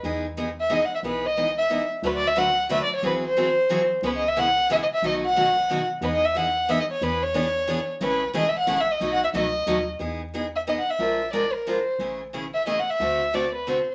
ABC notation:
X:1
M:3/4
L:1/16
Q:"Swing" 1/4=181
K:E
V:1 name="Violin"
z6 e2 (3d2 f2 e2 | B2 d4 e4 z2 | (3B2 =d2 e2 f4 (3e2 d2 c2 | B2 ^B8 z2 |
(3B2 d2 e2 f4 (3e2 d2 e2 | d2 f8 z2 | (3B2 d2 e2 f4 (3e2 d2 c2 | B2 c8 z2 |
B4 (3d2 e2 f2- (3f2 e2 d2- | (3d2 f2 e2 d6 z2 | z6 e2 (3d2 f2 e2- | e4 =d2 ^A2 =c3 z |
z6 e2 (3d2 f2 e2- | e4 =d2 B2 =c3 z |]
V:2 name="Steel-string acoustic guitar"
[E,B,DG]2 z2 [E,B,DG]2 z2 [E,B,DG]2 z2 | [E,B,DG]2 z2 [E,B,DG]2 z2 [E,B,DG]2 z2 | [=D,F,A,=DFB]2 z2 [D,F,A,DFB]2 z2 [D,F,A,DFB]2 z2 | [E,F,^B,FG]2 z2 [E,F,B,FG]2 z2 [E,F,B,FG]2 z2 |
[C,E,B,CG]2 z2 [C,E,B,CG]2 z2 [C,E,B,CG]2 z2 | [B,,F,A,DF]2 z2 [B,,F,A,DF]2 z2 [B,,F,A,DF]2 z2 | [E,B,DG]2 z2 [E,B,DG]2 z2 [E,B,DG]2 z2 | [E,B,=DG]2 z2 [E,B,DG]2 z2 [E,B,DG]2 z2 |
[C,E,A,CG]2 z2 [C,E,A,CG]2 z2 [C,E,A,CG]2 z2 | [B,,F,A,DF]2 z2 [B,,F,A,DF]2 z2 [B,,F,A,DF]2 z2 | [E,B,DG]2 z2 [E,B,DG]2 z2 [E,B,DG]2 z2 | [^E,G,=D^E^A]2 z2 [E,G,DEA]2 z2 [E,G,DEA]2 z2 |
[C,E,A,CG]2 z2 [C,E,A,CG]2 z2 [C,E,A,CG]2 z2 | [=D,A,=CFA]2 z2 [D,A,CFA]2 z2 [D,A,CFA]2 z2 |]
V:3 name="Steel-string acoustic guitar"
[E,G,B,DG]2 z2 [E,G,B,DG]2 z2 [E,G,B,DG]2 z2 | [E,G,B,DG]2 z2 [E,G,B,DG]2 z2 [E,G,B,DG]2 z2 | [=D,F,A,=DFB]2 z2 [D,F,A,DFB]2 z2 [D,F,A,DFB]2 z2 | [E,F,^B,FG]2 z2 [E,F,B,FG]2 z2 [E,F,B,FG]2 z2 |
[C,G,B,EG]2 z2 [C,G,B,EG]2 z2 [C,G,B,EG]2 z2 | [B,,D,F,B,DA]2 z2 [B,,D,F,B,DA]2 z2 [B,,D,F,B,DA]2 z2 | [E,G,B,DG]2 z2 [E,G,B,DG]2 z2 [E,G,B,DG]2 z2 | [E,B,=DGB]2 z2 [E,B,DGB]2 z2 [E,B,DGB]2 z2 |
[E,G,CEA]2 z2 [E,G,CEA]2 z2 [E,G,CEA]2 z2 | [B,,F,A,DFB]2 z2 [B,,F,A,DFB]2 z2 [B,,F,A,DFB]2 z2 | z12 | z12 |
z12 | z12 |]
V:4 name="FM bass" clef=bass
E,,12 | B,,,12 | =D,,12 | G,,,12 |
C,,12 | B,,,12 | E,,12 | E,,12 |
A,,,4 G,,,4 A,,,4 | B,,,4 C,,4 D,,4 | E,,12 | ^A,,,12 |
A,,,12 | =D,,12 |]